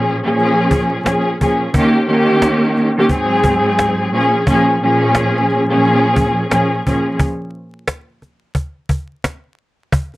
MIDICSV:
0, 0, Header, 1, 3, 480
1, 0, Start_track
1, 0, Key_signature, -5, "minor"
1, 0, Tempo, 681818
1, 1225, Time_signature, 4, 2, 24, 8
1, 7161, End_track
2, 0, Start_track
2, 0, Title_t, "String section"
2, 0, Program_c, 0, 48
2, 0, Note_on_c, 0, 46, 102
2, 0, Note_on_c, 0, 53, 86
2, 0, Note_on_c, 0, 61, 93
2, 0, Note_on_c, 0, 68, 110
2, 116, Note_off_c, 0, 46, 0
2, 119, Note_off_c, 0, 53, 0
2, 123, Note_off_c, 0, 61, 0
2, 126, Note_off_c, 0, 68, 0
2, 164, Note_on_c, 0, 46, 105
2, 170, Note_on_c, 0, 53, 92
2, 176, Note_on_c, 0, 61, 90
2, 182, Note_on_c, 0, 68, 113
2, 704, Note_off_c, 0, 46, 0
2, 707, Note_off_c, 0, 53, 0
2, 709, Note_off_c, 0, 61, 0
2, 713, Note_off_c, 0, 68, 0
2, 731, Note_on_c, 0, 46, 77
2, 737, Note_on_c, 0, 53, 69
2, 743, Note_on_c, 0, 61, 76
2, 750, Note_on_c, 0, 68, 92
2, 964, Note_off_c, 0, 46, 0
2, 967, Note_off_c, 0, 53, 0
2, 970, Note_off_c, 0, 61, 0
2, 973, Note_off_c, 0, 68, 0
2, 981, Note_on_c, 0, 46, 76
2, 988, Note_on_c, 0, 53, 70
2, 994, Note_on_c, 0, 61, 65
2, 1000, Note_on_c, 0, 68, 82
2, 1209, Note_off_c, 0, 46, 0
2, 1212, Note_off_c, 0, 53, 0
2, 1215, Note_off_c, 0, 61, 0
2, 1215, Note_on_c, 0, 51, 102
2, 1218, Note_off_c, 0, 68, 0
2, 1222, Note_on_c, 0, 58, 96
2, 1228, Note_on_c, 0, 61, 84
2, 1235, Note_on_c, 0, 67, 109
2, 1446, Note_off_c, 0, 51, 0
2, 1449, Note_off_c, 0, 58, 0
2, 1452, Note_off_c, 0, 61, 0
2, 1455, Note_on_c, 0, 51, 101
2, 1456, Note_off_c, 0, 67, 0
2, 1461, Note_on_c, 0, 58, 96
2, 1468, Note_on_c, 0, 61, 88
2, 1474, Note_on_c, 0, 67, 110
2, 2030, Note_off_c, 0, 51, 0
2, 2033, Note_off_c, 0, 58, 0
2, 2037, Note_off_c, 0, 61, 0
2, 2040, Note_off_c, 0, 67, 0
2, 2087, Note_on_c, 0, 51, 89
2, 2094, Note_on_c, 0, 58, 82
2, 2100, Note_on_c, 0, 61, 84
2, 2106, Note_on_c, 0, 67, 98
2, 2172, Note_on_c, 0, 44, 104
2, 2179, Note_on_c, 0, 54, 96
2, 2181, Note_off_c, 0, 51, 0
2, 2184, Note_off_c, 0, 58, 0
2, 2185, Note_on_c, 0, 60, 90
2, 2187, Note_off_c, 0, 61, 0
2, 2191, Note_off_c, 0, 67, 0
2, 2191, Note_on_c, 0, 68, 114
2, 2894, Note_on_c, 0, 46, 92
2, 2899, Note_off_c, 0, 44, 0
2, 2901, Note_on_c, 0, 53, 81
2, 2902, Note_off_c, 0, 54, 0
2, 2905, Note_off_c, 0, 60, 0
2, 2905, Note_off_c, 0, 68, 0
2, 2907, Note_on_c, 0, 61, 86
2, 2914, Note_on_c, 0, 68, 109
2, 3125, Note_off_c, 0, 46, 0
2, 3129, Note_off_c, 0, 53, 0
2, 3132, Note_off_c, 0, 61, 0
2, 3135, Note_off_c, 0, 68, 0
2, 3139, Note_on_c, 0, 46, 94
2, 3145, Note_on_c, 0, 53, 100
2, 3151, Note_on_c, 0, 61, 91
2, 3158, Note_on_c, 0, 68, 112
2, 3368, Note_off_c, 0, 46, 0
2, 3371, Note_off_c, 0, 53, 0
2, 3374, Note_off_c, 0, 61, 0
2, 3377, Note_off_c, 0, 68, 0
2, 3388, Note_on_c, 0, 46, 104
2, 3395, Note_on_c, 0, 53, 88
2, 3402, Note_on_c, 0, 61, 93
2, 3408, Note_on_c, 0, 68, 109
2, 3957, Note_off_c, 0, 46, 0
2, 3960, Note_off_c, 0, 53, 0
2, 3964, Note_off_c, 0, 61, 0
2, 3966, Note_off_c, 0, 68, 0
2, 4005, Note_on_c, 0, 46, 103
2, 4011, Note_on_c, 0, 53, 90
2, 4017, Note_on_c, 0, 61, 93
2, 4024, Note_on_c, 0, 68, 116
2, 4544, Note_off_c, 0, 46, 0
2, 4547, Note_off_c, 0, 53, 0
2, 4550, Note_off_c, 0, 61, 0
2, 4553, Note_off_c, 0, 68, 0
2, 4571, Note_on_c, 0, 46, 78
2, 4577, Note_on_c, 0, 53, 73
2, 4583, Note_on_c, 0, 61, 77
2, 4590, Note_on_c, 0, 68, 92
2, 4804, Note_off_c, 0, 46, 0
2, 4807, Note_off_c, 0, 53, 0
2, 4810, Note_off_c, 0, 61, 0
2, 4813, Note_off_c, 0, 68, 0
2, 4823, Note_on_c, 0, 46, 79
2, 4829, Note_on_c, 0, 53, 68
2, 4835, Note_on_c, 0, 61, 68
2, 4842, Note_on_c, 0, 68, 80
2, 5050, Note_off_c, 0, 46, 0
2, 5053, Note_off_c, 0, 53, 0
2, 5056, Note_off_c, 0, 61, 0
2, 5059, Note_off_c, 0, 68, 0
2, 7161, End_track
3, 0, Start_track
3, 0, Title_t, "Cajon"
3, 274, Note_on_c, 9, 38, 50
3, 344, Note_off_c, 9, 38, 0
3, 499, Note_on_c, 9, 36, 101
3, 569, Note_off_c, 9, 36, 0
3, 746, Note_on_c, 9, 38, 110
3, 748, Note_off_c, 9, 38, 0
3, 748, Note_on_c, 9, 38, 89
3, 819, Note_off_c, 9, 38, 0
3, 994, Note_on_c, 9, 36, 88
3, 1064, Note_off_c, 9, 36, 0
3, 1226, Note_on_c, 9, 36, 116
3, 1296, Note_off_c, 9, 36, 0
3, 1703, Note_on_c, 9, 38, 111
3, 1706, Note_off_c, 9, 38, 0
3, 1706, Note_on_c, 9, 38, 87
3, 1777, Note_off_c, 9, 38, 0
3, 1947, Note_on_c, 9, 38, 32
3, 2018, Note_off_c, 9, 38, 0
3, 2177, Note_on_c, 9, 36, 88
3, 2194, Note_on_c, 9, 38, 51
3, 2247, Note_off_c, 9, 36, 0
3, 2264, Note_off_c, 9, 38, 0
3, 2419, Note_on_c, 9, 36, 98
3, 2490, Note_off_c, 9, 36, 0
3, 2666, Note_on_c, 9, 38, 112
3, 2669, Note_off_c, 9, 38, 0
3, 2669, Note_on_c, 9, 38, 88
3, 2740, Note_off_c, 9, 38, 0
3, 3145, Note_on_c, 9, 36, 116
3, 3216, Note_off_c, 9, 36, 0
3, 3623, Note_on_c, 9, 38, 114
3, 3626, Note_off_c, 9, 38, 0
3, 3626, Note_on_c, 9, 38, 91
3, 3696, Note_off_c, 9, 38, 0
3, 3867, Note_on_c, 9, 38, 30
3, 3937, Note_off_c, 9, 38, 0
3, 4113, Note_on_c, 9, 38, 50
3, 4184, Note_off_c, 9, 38, 0
3, 4339, Note_on_c, 9, 36, 100
3, 4410, Note_off_c, 9, 36, 0
3, 4586, Note_on_c, 9, 38, 113
3, 4588, Note_off_c, 9, 38, 0
3, 4588, Note_on_c, 9, 38, 90
3, 4659, Note_off_c, 9, 38, 0
3, 4834, Note_on_c, 9, 36, 90
3, 4904, Note_off_c, 9, 36, 0
3, 5065, Note_on_c, 9, 36, 115
3, 5136, Note_off_c, 9, 36, 0
3, 5544, Note_on_c, 9, 38, 115
3, 5547, Note_off_c, 9, 38, 0
3, 5547, Note_on_c, 9, 38, 90
3, 5617, Note_off_c, 9, 38, 0
3, 5787, Note_on_c, 9, 38, 31
3, 5858, Note_off_c, 9, 38, 0
3, 6018, Note_on_c, 9, 36, 87
3, 6035, Note_on_c, 9, 38, 50
3, 6088, Note_off_c, 9, 36, 0
3, 6105, Note_off_c, 9, 38, 0
3, 6260, Note_on_c, 9, 36, 96
3, 6330, Note_off_c, 9, 36, 0
3, 6506, Note_on_c, 9, 38, 110
3, 6509, Note_off_c, 9, 38, 0
3, 6509, Note_on_c, 9, 38, 89
3, 6580, Note_off_c, 9, 38, 0
3, 6986, Note_on_c, 9, 36, 116
3, 7057, Note_off_c, 9, 36, 0
3, 7136, Note_on_c, 9, 38, 33
3, 7161, Note_off_c, 9, 38, 0
3, 7161, End_track
0, 0, End_of_file